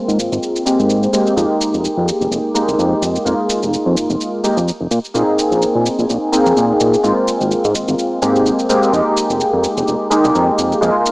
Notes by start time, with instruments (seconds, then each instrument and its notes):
Already playing: analog polysynth G#3 A#3 C4 F4
0.08 analog synth bass G#2, cabasa
0.19 analog synth bass G#1, cabasa
0.32 analog synth bass G#1, cabasa
0.43 cabasa
0.56 cabasa
0.65 analog polysynth G#3 A#3 C4 G4, cabasa
0.79 analog synth bass G#2, cabasa
0.90 cabasa
1.03 cabasa
1.13 analog polysynth G#3 A#3 C4 G4, cabasa
1.27 cabasa
1.36 analog synth bass F2, analog polysynth G#3 A#3 D#4 G4, cabasa
1.61 cabasa
1.74 analog synth bass F1, cabasa
1.85 cabasa
1.97 analog synth bass F2
2.08 cabasa
2.21 analog synth bass F1, cabasa
2.31 analog synth bass F1, cabasa
2.54 analog polysynth G#3 A#3 D#4 G4, cabasa
2.68 analog synth bass C2, cabasa
2.78 analog synth bass F2, cabasa
3.02 analog synth bass F2, cabasa
3.16 cabasa
3.25 analog synth bass F2, analog polysynth G#3 A#3 D#4 F4, cabasa
3.50 cabasa
3.62 analog synth bass F1, cabasa
3.73 cabasa
3.86 analog synth bass F2
3.96 analog synth bass F1, cabasa
4.10 analog synth bass F1, cabasa
4.21 cabasa
4.44 analog polysynth G#3 A#3 D#4 G4, cabasa
4.57 analog synth bass F2, cabasa
4.68 cabasa
4.81 analog synth bass F1
4.91 analog synth bass A#2, cabasa
5.05 cabasa
5.14 analog synth bass A#2, analog polysynth A#3 C4 D#4 G#4, cabasa
5.39 cabasa
5.51 analog synth bass A#1, cabasa
5.62 cabasa
5.75 analog synth bass A#2
5.86 cabasa
5.99 analog synth bass A#1, cabasa
6.09 analog synth bass A#1, cabasa
6.32 analog polysynth A#3 C4 D#4 G#4, cabasa
6.46 analog synth bass F2, cabasa
6.57 analog synth bass A#2, cabasa
6.80 analog synth bass A#2, cabasa
6.94 cabasa
7.03 analog synth bass G#2, analog polysynth G#3 A#3 C4 F4, cabasa
7.28 cabasa
7.41 analog synth bass G#1, cabasa
7.51 cabasa
7.64 analog synth bass G#2, cabasa
7.75 analog synth bass G#1, cabasa
7.88 analog synth bass G#1, cabasa
7.99 cabasa
8.22 analog synth bass G#2, analog polysynth G#3 A#3 C4 G4, cabasa
8.36 cabasa
8.46 cabasa
8.59 cabasa
8.69 analog polysynth G#3 A#3 C4 G4, cabasa
8.83 cabasa
8.92 analog synth bass F2, analog polysynth G#3 A#3 D#4 G4, cabasa
9.17 cabasa
9.30 analog synth bass F1, cabasa
9.40 cabasa
9.53 analog synth bass F2
9.64 cabasa
9.77 analog synth bass F1, cabasa
9.88 analog synth bass F1, cabasa
10.10 analog polysynth G#3 A#3 D#4 G4, cabasa
10.24 analog synth bass C2, cabasa
10.35 analog synth bass F2, cabasa
10.59 analog synth bass F2, cabasa
10.72 cabasa
10.81 analog synth bass F2, analog polysynth G#3 A#3 D#4 F4, cabasa
11.06 cabasa